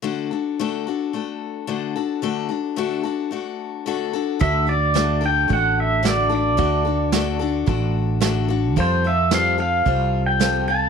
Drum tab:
SD |--------|--------|--o---o-|--o---o-|
BD |--------|--------|o---o---|o---o---|

SD |--o---o-|
BD |o---o---|